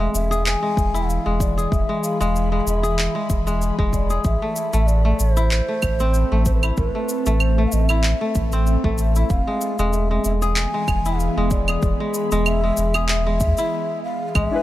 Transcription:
Already playing: ambient pad E3 G#4, kora C4 E4, bansuri E5
0.00 kora G#3
0.14 sub bass E1, bansuri E5, shaker
0.31 kora G#4, shaker
0.46 bansuri G#5, clap, shaker
0.63 kora G#3
0.77 sub bass E1, kick, shaker
0.84 ambient pad B5
0.94 kora E4, shaker
1.09 bansuri F5, shaker
1.26 sub bass E1, kora G#3
1.40 bansuri D5, kick, shaker
1.58 kora G#4, shaker
1.71 sub bass E1, bansuri E5, kick, shaker
1.89 kora G#3
2.03 bansuri F5, shaker
2.21 sub bass E1, kora G#3, shaker
2.36 shaker
2.52 kora G#3
2.60 bansuri F5
2.66 sub bass E1, bansuri E5, shaker
2.83 kora G#4, shaker
2.99 clap, shaker
3.15 kora G#3
3.30 sub bass E1, kick, shaker
3.47 kora G#3, shaker
3.62 shaker
3.79 sub bass E1, kora G#3, kick
3.93 bansuri D5, kick, shaker
4.10 kora G#4, shaker
4.24 sub bass A1, ambient pad A3, bansuri E5, kick, shaker
4.42 kora A3
4.56 shaker
4.73 sub bass A1, kora A3, shaker
4.84 ambient pad A4, bansuri D5
4.88 shaker
5.05 kora A3
5.17 sub bass A1, ambient pad C4, bansuri C5, shaker
5.37 kora E4, shaker
5.51 clap, shaker
5.68 kora A3
5.82 sub bass A1, kick, claves, shaker
6.00 kora C4, shaker
6.14 shaker
6.32 sub bass A1, kora A3
6.46 bansuri C5, kick, shaker
6.54 bansuri B4
6.61 kora E4, bansuri C5, claves, shaker
6.77 sub bass A1, bansuri B4, kick, shaker
6.95 kora A3
7.09 shaker
7.26 sub bass A1, kora A3, shaker
7.40 bansuri C5, claves, shaker
7.58 kora A3
7.66 bansuri F5
7.72 sub bass A1, bansuri D#5, shaker
7.85 bansuri E5, claves, shaker
7.90 kora E4
8.04 clap, shaker
8.21 kora A3
8.35 sub bass A1, kick, shaker
8.52 kora C4, shaker
8.66 shaker
8.84 sub bass A1, kora A3, kick
8.98 bansuri E5, shaker
9.15 kora E4, shaker
9.30 sub bass E1, ambient pad E3, bansuri F5, kick, shaker
9.39 ambient pad B3
9.47 kora G#3
9.61 shaker
9.69 ambient pad G#4
9.79 sub bass E1, kora G#3, shaker
9.93 bansuri E5, shaker
10.11 kora G#3
10.25 sub bass E1, bansuri E5, shaker
10.42 kora G#4, shaker
10.54 bansuri G#5, ambient pad B5, clap, shaker
10.74 kora G#3
10.88 sub bass E1, kick, claves, shaker
11.05 kora E4, shaker
11.19 bansuri F5, shaker
11.37 sub bass E1, kora G#3
11.51 bansuri D5, kick, shaker
11.68 kora G#4, claves, shaker
11.82 sub bass E1, kick, shaker
12.00 kora G#3
12.14 shaker
12.31 sub bass E1, kora G#3, shaker
12.45 bansuri E5, claves, shaker
12.64 kora G#3
12.77 sub bass E1, shaker
12.94 kora G#4, claves, shaker
13.09 bansuri E5, clap, shaker
13.27 kora G#3
13.40 sub bass E2, kick, shaker
13.57 kora E4, shaker
14.04 bansuri F5
14.29 bansuri F5
14.35 sub bass A1, ambient pad A2, kora G#3, bansuri E5, kick, claves, shaker
14.51 synth stab D4 E4 G#4 B4

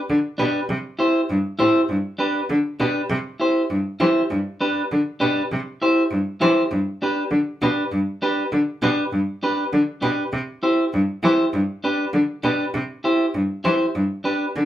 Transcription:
0.09 cello D3
0.38 cello B2, clean electric guitar D4 G4 B4
0.69 cello C3
0.99 clean electric guitar E4 G4 C5
1.30 cello G2
1.59 cello A2, clean electric guitar E4 G4 C5
1.89 cello G2
2.18 clean electric guitar D4 G4 B4
2.50 cello D3
2.80 cello B2, clean electric guitar D4 G4 B4
3.10 cello C3
3.40 clean electric guitar E4 G4 C5
3.70 cello G2
4.00 cello E3, clean electric guitar E4 G4 C5
4.30 cello G2
4.61 clean electric guitar D4 G4 B4
4.92 cello D3
5.20 cello B2, clean electric guitar D4 G4 B4
5.52 cello C3
5.82 clean electric guitar E4 G4 C5
6.11 cello G2
6.41 cello E3, clean electric guitar E4 G4 C5
6.71 cello G2
7.02 clean electric guitar D4 G4 B4
7.31 cello D3
7.62 cello B2, clean electric guitar D4 G4 B4
7.92 cello G2
8.22 clean electric guitar D4 G4 B4
8.52 cello D3
8.82 cello B2, clean electric guitar D4 G4 B4
9.12 cello G2
9.43 clean electric guitar D4 G4 B4
9.73 cello D3
10.02 cello B2, clean electric guitar D4 G4 B4
10.32 cello C3
10.63 clean electric guitar E4 G4 C5
10.93 cello G2
11.23 cello E3, clean electric guitar E4 G4 C5
11.53 cello G2
11.84 clean electric guitar D4 G4 B4
12.13 cello D3
12.44 cello B2, clean electric guitar D4 G4 B4
12.74 cello C3
13.04 clean electric guitar E4 G4 C5
13.34 cello G2
13.64 cello E3, clean electric guitar E4 G4 C5
13.95 cello G2
14.24 clean electric guitar D4 G4 B4
14.56 cello D3

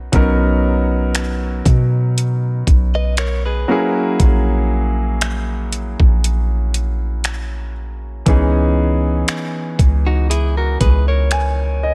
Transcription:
Already playing: grand piano A#4
0.12 808-style bass B1, grand piano F#3 B3 C#4 D#4 A#4, kick, closed hi-hat
1.15 finger snap, closed hi-hat
1.66 808-style bass B2, kick, closed hi-hat
2.18 closed hi-hat
2.67 808-style bass B1, kick, closed hi-hat
2.95 clean electric guitar B4 D#5
3.17 clean electric guitar A#4 C#5, finger snap, closed hi-hat
3.46 clean electric guitar G#4 B4
3.68 grand piano F#3 A#3 C#4 E4 G#4
4.20 808-style bass A#1, kick, closed hi-hat
5.21 finger snap, closed hi-hat
5.72 closed hi-hat
6.00 808-style bass A#1, kick
6.24 closed hi-hat
6.74 closed hi-hat
7.24 finger snap, closed hi-hat
8.26 808-style bass C#2, grand piano E3 B3 C#4 D#4 G#4, kick, closed hi-hat
9.28 finger snap, closed hi-hat
9.79 808-style bass C#2, kick, closed hi-hat
10.07 clean electric guitar D#4 F#4
10.30 clean electric guitar E4 G#4, closed hi-hat
10.57 clean electric guitar F#4 A#4
10.81 808-style bass C#2, clean electric guitar G#4 B4, kick, closed hi-hat
11.08 clean electric guitar A#4 C#5
11.31 grand piano G#5, finger snap, closed hi-hat
11.83 grand piano D#5

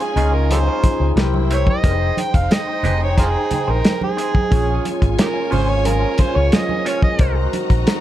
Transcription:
Already playing: string section C#4 F4 G#5, tine electric piano D#4 F4 G#4
0.00 harmonica G#4, muted clean electric guitar stroke, closed hi-hat
0.16 fingered electric bass C#2, clean electric guitar G#3 C#4 F4 C5, tine electric piano D#4 F4 G#4 D#5, closed hi-hat, low conga
0.34 harmonica A#4, muted clean electric guitar stroke
0.50 tine electric piano D#4 F4 G#4 C5, harmonica G4 A4 C5, muted clean electric guitar stroke, closed hi-hat, muted conga
0.67 clean electric guitar G#3 C#4 F4 C5
0.83 muted clean electric guitar stroke, kick, closed hi-hat, muted conga
1.00 fingered electric bass C#2, muted clean electric guitar stroke
1.16 fingered electric bass C2, tine electric piano E4 G4 A#4 B4, string section E4 C5 G5, snare, closed hi-hat, high conga
1.25 tine electric piano C5
1.34 muted clean electric guitar stroke, high conga
1.51 clean electric guitar A#3 E4 G4 C5, harmonica C#5, closed hi-hat
1.67 harmonica D#5, muted clean electric guitar stroke, kick, high conga
1.83 fingered electric bass F1, clean electric guitar B3 D4 G4 B4, tine electric piano D#4 G#4 A#4 G5, string section D#4 C5 G5, kick, closed hi-hat
1.91 tine electric piano C5
1.97 clean electric guitar C4 D#4 G#4 C5
2.17 harmonica G5, closed hi-hat, muted conga
2.34 fingered electric bass F1, harmonica F5, muted clean electric guitar stroke, kick, closed hi-hat
2.51 harmonica D#5, snare, closed hi-hat, high conga
2.67 muted clean electric guitar stroke
2.83 fingered electric bass F1, clean electric guitar C4 D#4 G#4 C5, tine electric piano D#4 G4 G#4 C5, closed hi-hat, low conga
3.01 harmonica C#5, muted clean electric guitar stroke
3.17 tine electric piano D#4 G#4 C5 G5, harmonica D#4 F4 G#4, muted clean electric guitar stroke, kick, closed hi-hat, muted conga
3.34 muted clean electric guitar stroke
3.51 muted fingered electric bass stroke, closed hi-hat, muted conga, low conga
3.68 fingered electric bass A#1, clean electric guitar C4 D#4 G#4 C5, harmonica A#4
3.85 snare, closed hi-hat, high conga
4.01 harmonica G#4, muted clean electric guitar stroke, high conga
4.17 clean electric guitar C4 D#4 G#4 C5, closed hi-hat
4.34 muted clean electric guitar stroke, kick, high conga
4.50 fingered electric bass A#1, french horn section C#3 G#3 A#3 F4, clean electric guitar C#4 F4 G#4 C#5, tine electric piano C#4 F4 G#4 C#5, string section F4 C#5 G#5, kick, closed hi-hat
4.85 closed hi-hat, muted conga
5.01 fingered electric bass G#1, muted clean electric guitar stroke, kick, closed hi-hat
5.19 harmonica D#4 G4 A#4, snare, closed hi-hat, high conga
5.34 muted clean electric guitar stroke
5.51 fingered electric bass G#1, clean electric guitar C#4 F4 G#4 C#5, tine electric piano C#4 F4 G#4 C5, harmonica C5, open hi-hat, low conga
5.68 harmonica C#5, muted clean electric guitar stroke
5.85 tine electric piano C#4 F4 G#4 A#4, harmonica A#4, muted clean electric guitar stroke, closed hi-hat, muted conga
6.02 muted clean electric guitar stroke
6.18 harmonica C5, muted fingered electric bass stroke, kick, closed hi-hat, muted conga
6.35 fingered electric bass C#2, clean electric guitar C#4 F4 G#4 C#5, harmonica C#5
6.52 harmonica D#5, snare, closed hi-hat, high conga
6.68 muted clean electric guitar stroke, high conga
6.85 clean electric guitar C#4 F4 G#4 C#5, harmonica C#5, snare, closed hi-hat
7.02 harmonica D#5, muted clean electric guitar stroke, kick, high conga
7.18 fingered electric bass C2, french horn section D#3 C4 F#4, clean electric guitar G#3 D#4 F#4 C5, tine electric piano D#4 F#4 A#4 C5, string section F#4 D#5 A#5, kick, closed hi-hat
7.53 closed hi-hat, muted conga
7.70 fingered electric bass A#1, muted clean electric guitar stroke, kick, closed hi-hat
7.87 snare, closed hi-hat, high conga

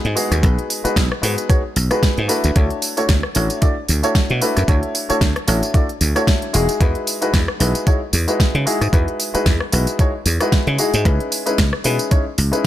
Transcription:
Already playing: grand piano G#3 B3 D#4 F#4 B4
0.05 slap bass G#2, closed hi-hat
0.15 grand piano G#3 B3 D#4 F#4 G#4, open hi-hat, tambourine
0.32 slap bass D#2, cross-stick, closed hi-hat, tambourine
0.43 slap bass B1, grand piano G#3 B3 D#4 F#4 B4, kick, closed hi-hat, tambourine
0.59 closed hi-hat
0.70 open hi-hat, tambourine
0.84 grand piano G#3 B3 D#4 F#4 B4, muted slap bass stroke, closed hi-hat, tambourine
0.96 slap bass B1, kick, snare, closed hi-hat, tambourine
1.12 cross-stick
1.22 slap bass G#2, grand piano G#3 B3 D#4 F#4 B4, open hi-hat, tambourine
1.38 closed hi-hat, tambourine
1.49 grand piano G#3 B3 D#4 F#4 C#5, kick, closed hi-hat, tambourine
1.76 slap bass B1, open hi-hat, tambourine
1.91 grand piano G#3 B3 D#4 F#4 B4, cross-stick, closed hi-hat, tambourine
2.03 kick, snare, closed hi-hat, tambourine
2.17 slap bass G#2, closed hi-hat
2.28 grand piano A3 D4 E4 F#4 B4, open hi-hat, tambourine
2.44 slap bass D2, closed hi-hat, tambourine
2.55 slap bass D2, grand piano A3 D4 E4 F#4 C#5, kick, closed hi-hat, tambourine
2.70 closed hi-hat
2.82 open hi-hat, tambourine
2.97 grand piano A3 D4 E4 F#4 C#5, closed hi-hat, tambourine
3.09 slap bass D2, kick, snare, closed hi-hat, tambourine
3.23 cross-stick
3.35 slap bass A1, grand piano A3 D4 E4 F#4 C#5, open hi-hat, tambourine
3.50 closed hi-hat, tambourine
3.61 grand piano A3 D4 E4 F#4 D5, kick, closed hi-hat, tambourine
3.89 slap bass D2, open hi-hat, tambourine
4.03 grand piano A3 D4 E4 F#4 C#5, closed hi-hat, tambourine
4.15 kick, snare, closed hi-hat, tambourine
4.30 slap bass B2, closed hi-hat
4.41 grand piano A3 D4 E4 F#4 B4, open hi-hat, tambourine
4.57 slap bass F#2, cross-stick, closed hi-hat, tambourine
4.68 slap bass D2, grand piano A3 D4 E4 F#4 C#5, kick, closed hi-hat, tambourine
4.83 closed hi-hat
4.95 open hi-hat, tambourine
5.09 grand piano A3 D4 E4 F#4 C#5, muted slap bass stroke, closed hi-hat, tambourine
5.21 slap bass D2, kick, snare, closed hi-hat, tambourine
5.36 cross-stick, closed hi-hat
5.47 slap bass A1, grand piano A3 D4 E4 F#4 C#5, open hi-hat, tambourine
5.63 closed hi-hat, tambourine
5.74 grand piano A3 D4 E4 F#4 D5, kick, closed hi-hat, tambourine
5.89 closed hi-hat
6.01 slap bass D2, open hi-hat, tambourine
6.15 grand piano A3 D4 E4 F#4 C#5, cross-stick, closed hi-hat, tambourine
6.27 kick, snare, closed hi-hat, tambourine
6.42 closed hi-hat
6.53 slap bass E1, grand piano G#3 D#4 E4 F#4 G#4, open hi-hat, tambourine
6.69 closed hi-hat, tambourine
6.80 slap bass E2, grand piano G#3 D#4 E4 F#4 B4, kick, closed hi-hat, tambourine
6.95 closed hi-hat
7.07 open hi-hat, tambourine
7.21 grand piano G#3 D#4 E4 F#4 B4, closed hi-hat, tambourine
7.34 slap bass E2, kick, snare, closed hi-hat, tambourine
7.48 cross-stick
7.60 slap bass B1, grand piano G#3 D#4 E4 F#4 B4, open hi-hat, tambourine
7.75 closed hi-hat, tambourine
7.87 grand piano G#3 D#4 E4 F#4 C#5, kick, closed hi-hat, tambourine
8.13 slap bass E2, open hi-hat, tambourine
8.28 grand piano G#3 D#4 E4 F#4 B4, closed hi-hat, tambourine
8.40 kick, snare, closed hi-hat, tambourine
8.55 slap bass C#3, closed hi-hat
8.66 grand piano G#3 D#4 E4 F#4 G#4, open hi-hat, tambourine
8.81 slap bass G#2, cross-stick, closed hi-hat, tambourine
8.92 slap bass E2, grand piano G#3 D#4 E4 F#4 B4, kick, closed hi-hat, tambourine
9.08 closed hi-hat
9.20 open hi-hat, tambourine
9.34 grand piano G#3 D#4 E4 F#4 B4, muted slap bass stroke, closed hi-hat, tambourine
9.46 slap bass E2, kick, snare, closed hi-hat, tambourine
9.60 cross-stick
9.72 slap bass B1, grand piano G#3 D#4 E4 F#4 B4, open hi-hat, tambourine
9.87 closed hi-hat, tambourine
9.99 grand piano G#3 D#4 E4 F#4 C#5, kick, closed hi-hat, tambourine
10.26 slap bass E2, open hi-hat, tambourine
10.40 grand piano G#3 D#4 E4 F#4 B4, cross-stick, closed hi-hat, tambourine
10.52 kick, snare, closed hi-hat, tambourine
10.67 slap bass C#3, closed hi-hat
10.78 grand piano G#3 D#4 E4 F#4 G#4, open hi-hat, tambourine
10.94 slap bass G#2, closed hi-hat, tambourine
11.05 slap bass C#2, grand piano G#3 C#4 D#4 E4 B4, kick, closed hi-hat, tambourine
11.20 closed hi-hat
11.32 open hi-hat, tambourine
11.46 grand piano G#3 C#4 D#4 E4 B4, closed hi-hat, tambourine
11.58 slap bass C#2, kick, snare, closed hi-hat, tambourine
11.73 cross-stick
11.84 slap bass B2, grand piano G#3 C#4 D#4 E4 B4, open hi-hat, tambourine
11.99 closed hi-hat, tambourine
12.11 grand piano G#3 C#4 D#4 E4 C#5, kick, closed hi-hat, tambourine
12.38 slap bass C#2, open hi-hat, tambourine
12.52 grand piano G#3 C#4 D#4 E4 B4, closed hi-hat, tambourine

